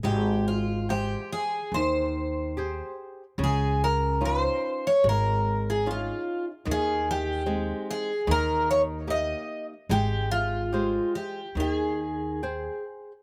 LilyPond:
<<
  \new Staff \with { instrumentName = "Twelve-string acoustic guitar" } { \time 4/4 \key aes \major \tempo 4 = 73 g'8 f'8 g'8 aes'8 c''4. r8 | aes'8 bes'8 c''8. des''16 bes'8. aes'16 f'8. r16 | aes'8 g'4 aes'8 bes'8 des''8 ees''8. r16 | g'8 f'4 g'8 aes'4. r8 | }
  \new Staff \with { instrumentName = "Nylon-string guitar" } { \time 4/4 \key aes \major aes4 <aes c'' g''>4 ees4 <g' aes' c''>4 | des4 <des' ees' f'>4 aes4 <des' ees' f'>4 | ees4 <aes c' ees'>4 ees4 <bes ees' g'>4 | aes4 <aes g' c''>4 ees4 <aes' c'' g''>4 | }
  \new Staff \with { instrumentName = "Upright bass" } { \clef bass \time 4/4 \key aes \major aes,,2 ees,2 | des,2 aes,,2 | ees,2 ees,2 | aes,,2 ees,2 | }
>>